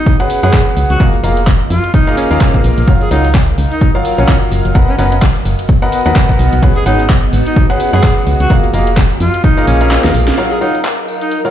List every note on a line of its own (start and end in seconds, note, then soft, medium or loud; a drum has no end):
0.00 1.00 B3 medium
0.00 0.15 D#4 medium
0.00 1.00 F#4 medium
0.00 8.50 D#5 medium
0.06 kick loud
0.06 closed hi-hat medium
0.06 tambourine soft
0.20 0.38 C#4 loud
0.20 0.38 F#4 medium
0.20 0.38 G#4 medium
0.20 0.38 B4 medium
0.20 0.38 C#5 medium
0.20 0.38 F#5 loud
0.20 closed hi-hat soft
0.30 open hi-hat loud
0.30 tambourine medium
0.43 0.50 F#2 loud
0.43 0.98 C#4 medium
0.43 0.98 F#4 medium
0.43 0.62 G#4 medium
0.43 0.98 G#4 medium
0.43 0.98 B4 medium
0.43 0.98 C#5 medium
0.43 0.98 F#5 loud
0.43 closed hi-hat medium
0.43 tambourine soft
0.53 kick loud
0.53 clap loud
0.53 closed hi-hat medium
0.53 tambourine soft
0.67 tambourine soft
0.77 0.86 C#2 medium
0.77 open hi-hat medium
0.77 tambourine medium
0.90 0.97 C#2 medium
0.90 1.05 F#4 medium
0.90 closed hi-hat soft
0.90 tambourine soft
1.00 1.10 A#1 loud
1.00 1.13 A#3 loud
1.00 1.13 F4 medium
1.00 1.13 G#4 medium
1.00 1.13 A#4 medium
1.00 1.13 D#5 medium
1.00 1.13 F5 loud
1.00 4.75 F5 medium
1.00 kick loud
1.00 closed hi-hat medium
1.00 tambourine soft
1.14 closed hi-hat soft
1.14 tambourine soft
1.24 1.66 F1 medium
1.24 1.37 A#3 medium
1.24 1.37 F4 medium
1.24 1.37 G#4 medium
1.24 1.37 A#4 medium
1.24 1.37 D#5 medium
1.24 1.37 F5 medium
1.24 open hi-hat loud
1.24 tambourine medium
1.37 closed hi-hat medium
1.37 tambourine soft
1.47 kick loud
1.47 clap loud
1.47 closed hi-hat medium
1.47 tambourine soft
1.60 4.75 A#4 medium
1.60 closed hi-hat soft
1.70 1.80 F2 medium
1.70 1.90 F4 medium
1.70 open hi-hat loud
1.70 tambourine medium
1.84 closed hi-hat soft
1.84 tambourine soft
1.94 2.14 D#4 medium
1.94 kick loud
1.94 closed hi-hat medium
1.94 tambourine soft
2.07 2.25 A#3 medium
2.07 2.25 F4 medium
2.07 2.25 G#4 medium
2.07 2.25 A#4 medium
2.07 2.25 D#5 medium
2.07 2.25 F5 loud
2.07 closed hi-hat soft
2.17 2.84 C#4 medium
2.17 open hi-hat loud
2.17 tambourine medium
2.31 2.38 D#2 loud
2.31 2.85 A#3 medium
2.31 2.85 F4 medium
2.31 2.85 G#4 medium
2.31 2.85 A#4 medium
2.31 2.85 D#5 medium
2.31 2.85 F5 loud
2.31 closed hi-hat soft
2.31 tambourine soft
2.41 kick loud
2.41 clap loud
2.41 closed hi-hat medium
2.41 tambourine soft
2.54 kick medium
2.54 closed hi-hat soft
2.54 tambourine soft
2.64 2.74 A#1 medium
2.64 open hi-hat medium
2.64 tambourine medium
2.78 2.85 A#1 medium
2.78 closed hi-hat soft
2.78 tambourine soft
2.88 2.97 F#1 loud
2.88 3.01 F#3 medium
2.88 3.01 F4 medium
2.88 3.01 F#4 medium
2.88 3.01 A#4 medium
2.88 3.01 C#5 medium
2.88 3.01 F5 loud
2.88 kick loud
2.88 closed hi-hat medium
2.88 tambourine soft
3.01 3.09 G#4 medium
3.01 closed hi-hat soft
3.01 tambourine soft
3.11 3.53 C#2 medium
3.11 3.24 F#3 medium
3.11 3.31 D#4 medium
3.11 3.24 F4 medium
3.11 3.24 F#4 medium
3.11 3.24 A#4 medium
3.11 3.24 C#5 medium
3.11 3.24 F5 medium
3.11 open hi-hat loud
3.11 tambourine medium
3.25 closed hi-hat medium
3.25 tambourine soft
3.35 kick loud
3.35 clap loud
3.35 closed hi-hat medium
3.35 tambourine soft
3.48 closed hi-hat soft
3.58 3.67 C#2 medium
3.58 open hi-hat medium
3.58 tambourine medium
3.71 3.90 D#4 medium
3.71 closed hi-hat medium
3.71 tambourine soft
3.81 kick loud
3.81 closed hi-hat medium
3.81 tambourine soft
3.95 4.12 F#3 medium
3.95 4.13 F4 medium
3.95 4.13 F#4 medium
3.95 4.13 A#4 medium
3.95 4.13 C#5 medium
3.95 4.13 F5 loud
3.95 closed hi-hat soft
4.05 open hi-hat loud
4.05 tambourine medium
4.18 4.25 A#1 loud
4.18 4.73 F#3 medium
4.18 4.37 C#4 medium
4.18 4.73 F4 medium
4.18 4.73 F#4 medium
4.18 4.73 A#4 medium
4.18 4.73 C#5 medium
4.18 4.73 F5 loud
4.18 closed hi-hat soft
4.18 tambourine soft
4.28 kick loud
4.28 clap loud
4.28 closed hi-hat medium
4.28 tambourine soft
4.42 tambourine soft
4.52 4.61 F#1 medium
4.52 open hi-hat medium
4.52 tambourine medium
4.65 4.72 F#1 medium
4.65 closed hi-hat soft
4.65 tambourine soft
4.75 4.85 B1 loud
4.75 4.88 B3 loud
4.75 4.88 F#4 medium
4.75 8.50 F#4 medium
4.75 4.88 A#4 medium
4.75 4.88 B4 medium
4.75 4.88 D#5 medium
4.75 4.88 F#5 loud
4.75 kick loud
4.75 closed hi-hat medium
4.75 tambourine soft
4.88 4.97 C#4 medium
4.88 closed hi-hat soft
4.88 tambourine soft
4.99 5.41 F#1 medium
4.99 5.12 B3 medium
4.99 5.07 C#4 medium
4.99 5.12 F#4 medium
4.99 5.12 A#4 medium
4.99 5.12 B4 medium
4.99 5.12 D#5 medium
4.99 5.12 F#5 medium
4.99 open hi-hat loud
4.99 tambourine medium
5.12 5.18 C#4 medium
5.12 closed hi-hat medium
5.12 tambourine soft
5.22 kick loud
5.22 clap loud
5.22 closed hi-hat medium
5.22 tambourine soft
5.28 8.50 B3 medium
5.35 closed hi-hat soft
5.45 5.55 F#1 medium
5.45 open hi-hat medium
5.45 tambourine medium
5.59 closed hi-hat medium
5.59 tambourine soft
5.69 kick loud
5.69 closed hi-hat medium
5.69 tambourine soft
5.82 6.00 B3 loud
5.82 6.00 F#4 medium
5.82 6.00 A#4 medium
5.82 6.00 B4 medium
5.82 6.00 D#5 medium
5.82 6.00 F#5 loud
5.82 closed hi-hat soft
5.92 open hi-hat loud
5.92 tambourine medium
6.06 6.13 D#2 loud
6.06 6.60 B3 medium
6.06 6.60 F#4 medium
6.06 6.60 A#4 medium
6.06 6.60 B4 medium
6.06 6.60 D#5 medium
6.06 6.60 F#5 loud
6.06 closed hi-hat soft
6.06 tambourine soft
6.16 kick loud
6.16 clap loud
6.16 closed hi-hat medium
6.16 tambourine soft
6.29 kick medium
6.29 closed hi-hat soft
6.29 tambourine soft
6.39 6.49 B1 medium
6.39 open hi-hat medium
6.39 tambourine medium
6.53 6.60 B1 medium
6.53 closed hi-hat soft
6.53 tambourine soft
6.63 6.72 C#2 loud
6.63 6.76 C#4 medium
6.63 6.76 F#4 medium
6.63 6.76 G#4 medium
6.63 6.76 B4 medium
6.63 6.76 C#5 medium
6.63 6.76 F#5 loud
6.63 kick loud
6.63 closed hi-hat medium
6.63 tambourine soft
6.76 6.84 G#4 medium
6.76 closed hi-hat soft
6.76 tambourine soft
6.86 7.28 G#1 medium
6.86 6.99 C#4 medium
6.86 7.06 D#4 medium
6.86 6.99 F#4 medium
6.86 6.99 G#4 medium
6.86 6.99 B4 medium
6.86 6.99 C#5 medium
6.86 6.99 F#5 loud
6.86 open hi-hat loud
6.86 tambourine medium
6.99 closed hi-hat medium
6.99 tambourine soft
7.09 kick loud
7.09 clap loud
7.09 closed hi-hat medium
7.09 tambourine soft
7.23 closed hi-hat soft
7.33 7.42 G#1 medium
7.33 open hi-hat medium
7.33 tambourine medium
7.46 7.65 D#4 medium
7.46 closed hi-hat medium
7.46 tambourine soft
7.56 kick loud
7.56 closed hi-hat medium
7.56 tambourine soft
7.70 7.88 C#4 loud
7.70 7.88 F#4 medium
7.70 7.88 G#4 medium
7.70 7.87 B4 medium
7.70 7.87 C#5 medium
7.70 7.88 F#5 loud
7.70 closed hi-hat soft
7.80 open hi-hat loud
7.80 tambourine medium
7.93 8.00 F#2 medium
7.93 8.48 C#4 medium
7.93 8.48 F#4 medium
7.93 8.48 G#4 medium
7.93 8.12 G#4 medium
7.93 8.48 B4 medium
7.93 8.48 C#5 medium
7.93 8.48 F#5 loud
7.93 closed hi-hat medium
7.93 tambourine soft
8.03 kick loud
8.03 clap loud
8.03 closed hi-hat medium
8.03 tambourine soft
8.17 tambourine soft
8.27 8.36 C#2 medium
8.27 open hi-hat medium
8.27 tambourine medium
8.40 8.47 C#2 medium
8.40 8.55 F#4 medium
8.40 closed hi-hat medium
8.40 tambourine soft
8.50 8.60 A#1 loud
8.50 8.63 A#3 loud
8.50 8.63 F4 medium
8.50 8.63 G#4 medium
8.50 8.63 A#4 medium
8.50 8.63 D#5 medium
8.50 11.51 F5 medium
8.50 8.63 F5 loud
8.50 kick loud
8.50 closed hi-hat medium
8.50 tambourine soft
8.64 closed hi-hat soft
8.64 tambourine soft
8.74 9.16 F1 medium
8.74 8.87 A#3 medium
8.74 8.87 F4 medium
8.74 8.87 G#4 medium
8.74 8.87 A#4 medium
8.74 8.87 D#5 medium
8.74 11.51 D#5 medium
8.74 8.87 F5 loud
8.74 open hi-hat loud
8.74 tambourine medium
8.87 closed hi-hat medium
8.87 tambourine soft
8.97 kick loud
8.97 clap loud
8.97 closed hi-hat medium
8.97 tambourine soft
9.10 closed hi-hat soft
9.10 tambourine soft
9.17 9.30 F2 medium
9.17 9.40 F4 medium
9.17 11.51 A#4 medium
9.17 open hi-hat medium
9.17 tambourine medium
9.34 closed hi-hat medium
9.34 tambourine soft
9.44 9.64 D#4 medium
9.44 kick loud
9.44 closed hi-hat medium
9.44 tambourine soft
9.57 9.75 A#3 loud
9.57 9.75 F4 medium
9.57 9.75 G#4 medium
9.57 9.75 A#4 medium
9.57 9.75 D#5 medium
9.57 9.75 F5 loud
9.57 closed hi-hat soft
9.57 tambourine soft
9.67 9.98 A#1 medium
9.67 10.34 C#4 loud
9.67 open hi-hat loud
9.67 tambourine medium
9.81 10.35 A#3 medium
9.81 10.35 F4 medium
9.81 10.35 G#4 medium
9.81 10.35 A#4 medium
9.81 10.35 D#5 medium
9.81 10.35 F5 loud
9.81 closed hi-hat medium
9.81 tambourine soft
9.91 snare medium
9.91 clap loud
9.91 closed hi-hat medium
9.91 tambourine soft
10.04 10.11 D#2 loud
10.04 snare medium
10.04 tambourine soft
10.14 10.32 A#1 medium
10.14 open hi-hat medium
10.14 tambourine medium
10.28 snare medium
10.28 closed hi-hat medium
10.28 tambourine soft
10.38 11.51 F#3 medium
10.38 10.51 F#3 medium
10.38 10.51 F4 medium
10.38 10.51 F#4 medium
10.38 10.51 A#4 medium
10.38 10.51 C#5 medium
10.38 10.51 F5 loud
10.38 closed hi-hat medium
10.38 tambourine soft
10.51 10.59 G#4 medium
10.51 closed hi-hat soft
10.51 tambourine soft
10.61 10.74 F#3 medium
10.61 10.81 D#4 medium
10.61 10.74 F4 medium
10.61 10.74 F#4 medium
10.61 10.74 A#4 medium
10.61 10.74 C#5 medium
10.61 10.74 F5 medium
10.61 tambourine medium
10.75 closed hi-hat medium
10.75 tambourine soft
10.85 clap loud
10.85 closed hi-hat medium
10.85 tambourine soft
10.98 closed hi-hat soft
11.09 tambourine medium
11.21 11.40 D#4 medium
11.21 closed hi-hat medium
11.21 tambourine soft
11.31 closed hi-hat medium
11.31 tambourine soft
11.45 11.51 F#3 medium
11.45 11.51 F4 medium
11.45 11.51 F#4 medium
11.45 11.51 A#4 medium
11.45 11.51 C#5 medium
11.45 11.51 F5 loud
11.45 closed hi-hat soft
11.45 tambourine soft